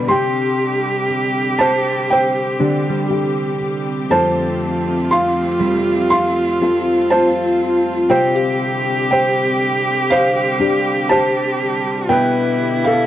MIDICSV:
0, 0, Header, 1, 6, 480
1, 0, Start_track
1, 0, Tempo, 1000000
1, 39, Time_signature, 4, 2, 24, 8
1, 6272, End_track
2, 0, Start_track
2, 0, Title_t, "Felt piano"
2, 0, Program_c, 0, 0
2, 40, Note_on_c, 0, 84, 89
2, 53, Note_on_c, 0, 79, 68
2, 502, Note_off_c, 0, 84, 0
2, 508, Note_off_c, 0, 79, 0
2, 761, Note_on_c, 0, 81, 99
2, 771, Note_on_c, 0, 72, 79
2, 990, Note_off_c, 0, 72, 0
2, 1009, Note_off_c, 0, 81, 0
2, 1010, Note_on_c, 0, 79, 90
2, 1021, Note_on_c, 0, 72, 67
2, 1708, Note_off_c, 0, 79, 0
2, 1713, Note_off_c, 0, 72, 0
2, 1972, Note_on_c, 0, 81, 92
2, 1977, Note_on_c, 0, 72, 65
2, 2431, Note_off_c, 0, 72, 0
2, 2453, Note_on_c, 0, 84, 93
2, 2460, Note_on_c, 0, 77, 76
2, 2462, Note_off_c, 0, 81, 0
2, 2909, Note_off_c, 0, 84, 0
2, 2913, Note_off_c, 0, 77, 0
2, 2929, Note_on_c, 0, 84, 102
2, 2935, Note_on_c, 0, 77, 81
2, 3390, Note_off_c, 0, 77, 0
2, 3410, Note_on_c, 0, 81, 86
2, 3414, Note_on_c, 0, 72, 69
2, 3421, Note_off_c, 0, 84, 0
2, 3870, Note_off_c, 0, 72, 0
2, 3886, Note_on_c, 0, 79, 84
2, 3891, Note_on_c, 0, 72, 73
2, 3901, Note_off_c, 0, 81, 0
2, 4348, Note_off_c, 0, 72, 0
2, 4365, Note_off_c, 0, 79, 0
2, 4372, Note_on_c, 0, 79, 85
2, 4380, Note_on_c, 0, 72, 63
2, 4832, Note_off_c, 0, 72, 0
2, 4850, Note_on_c, 0, 77, 92
2, 4857, Note_on_c, 0, 72, 71
2, 4861, Note_off_c, 0, 79, 0
2, 5310, Note_off_c, 0, 72, 0
2, 5324, Note_on_c, 0, 81, 91
2, 5333, Note_on_c, 0, 72, 66
2, 5340, Note_off_c, 0, 77, 0
2, 5788, Note_off_c, 0, 72, 0
2, 5804, Note_on_c, 0, 79, 93
2, 5817, Note_off_c, 0, 81, 0
2, 5817, Note_on_c, 0, 71, 70
2, 6149, Note_off_c, 0, 71, 0
2, 6165, Note_on_c, 0, 77, 79
2, 6173, Note_off_c, 0, 79, 0
2, 6178, Note_on_c, 0, 69, 60
2, 6272, Note_off_c, 0, 69, 0
2, 6272, Note_off_c, 0, 77, 0
2, 6272, End_track
3, 0, Start_track
3, 0, Title_t, "Cello"
3, 0, Program_c, 1, 42
3, 34, Note_on_c, 1, 67, 99
3, 1720, Note_off_c, 1, 67, 0
3, 1964, Note_on_c, 1, 65, 102
3, 3882, Note_on_c, 1, 67, 114
3, 3889, Note_off_c, 1, 65, 0
3, 5807, Note_on_c, 1, 64, 108
3, 5814, Note_off_c, 1, 67, 0
3, 6272, Note_off_c, 1, 64, 0
3, 6272, End_track
4, 0, Start_track
4, 0, Title_t, "Nylon-string guitar"
4, 0, Program_c, 2, 24
4, 40, Note_on_c, 2, 48, 72
4, 44, Note_on_c, 2, 67, 64
4, 1247, Note_off_c, 2, 67, 0
4, 1247, Note_on_c, 2, 62, 56
4, 1249, Note_on_c, 2, 67, 58
4, 1488, Note_off_c, 2, 67, 0
4, 1490, Note_on_c, 2, 67, 65
4, 1936, Note_off_c, 2, 62, 0
4, 1963, Note_off_c, 2, 48, 0
4, 1969, Note_off_c, 2, 67, 0
4, 1969, Note_on_c, 2, 41, 75
4, 1971, Note_on_c, 2, 69, 74
4, 3168, Note_off_c, 2, 69, 0
4, 3174, Note_on_c, 2, 60, 53
4, 3178, Note_on_c, 2, 65, 53
4, 3180, Note_on_c, 2, 69, 61
4, 3409, Note_off_c, 2, 65, 0
4, 3415, Note_on_c, 2, 65, 64
4, 3860, Note_off_c, 2, 60, 0
4, 3861, Note_off_c, 2, 65, 0
4, 3863, Note_off_c, 2, 69, 0
4, 3886, Note_on_c, 2, 48, 77
4, 3887, Note_off_c, 2, 41, 0
4, 3888, Note_on_c, 2, 65, 75
4, 4009, Note_off_c, 2, 65, 0
4, 4009, Note_on_c, 2, 67, 61
4, 5084, Note_off_c, 2, 67, 0
4, 5085, Note_on_c, 2, 62, 53
4, 5090, Note_on_c, 2, 67, 61
4, 5324, Note_off_c, 2, 67, 0
4, 5326, Note_on_c, 2, 67, 65
4, 5803, Note_off_c, 2, 48, 0
4, 5803, Note_off_c, 2, 67, 0
4, 5803, Note_on_c, 2, 47, 81
4, 5805, Note_on_c, 2, 71, 73
4, 6272, Note_off_c, 2, 47, 0
4, 6272, Note_off_c, 2, 62, 0
4, 6272, Note_off_c, 2, 71, 0
4, 6272, End_track
5, 0, Start_track
5, 0, Title_t, "String section"
5, 0, Program_c, 3, 48
5, 0, Note_on_c, 3, 50, 77
5, 0, Note_on_c, 3, 55, 73
5, 34, Note_on_c, 3, 60, 72
5, 34, Note_on_c, 3, 67, 87
5, 1947, Note_off_c, 3, 50, 0
5, 1947, Note_off_c, 3, 55, 0
5, 1964, Note_on_c, 3, 57, 75
5, 1968, Note_on_c, 3, 53, 76
5, 2902, Note_off_c, 3, 67, 0
5, 2930, Note_on_c, 3, 65, 71
5, 3865, Note_off_c, 3, 57, 0
5, 3867, Note_off_c, 3, 53, 0
5, 3877, Note_off_c, 3, 65, 0
5, 3887, Note_on_c, 3, 50, 77
5, 3889, Note_on_c, 3, 67, 84
5, 3890, Note_on_c, 3, 55, 73
5, 5780, Note_off_c, 3, 60, 0
5, 5784, Note_off_c, 3, 50, 0
5, 5785, Note_off_c, 3, 67, 0
5, 5807, Note_on_c, 3, 67, 93
5, 5808, Note_on_c, 3, 50, 81
5, 5809, Note_on_c, 3, 59, 73
5, 6272, Note_off_c, 3, 50, 0
5, 6272, Note_off_c, 3, 55, 0
5, 6272, Note_off_c, 3, 59, 0
5, 6272, Note_off_c, 3, 67, 0
5, 6272, End_track
6, 0, Start_track
6, 0, Title_t, "Harp"
6, 0, Program_c, 4, 46
6, 1246, Note_on_c, 4, 50, 48
6, 1388, Note_on_c, 4, 55, 47
6, 1987, Note_off_c, 4, 50, 0
6, 1987, Note_off_c, 4, 55, 0
6, 2686, Note_on_c, 4, 55, 67
6, 3908, Note_off_c, 4, 55, 0
6, 6272, End_track
0, 0, End_of_file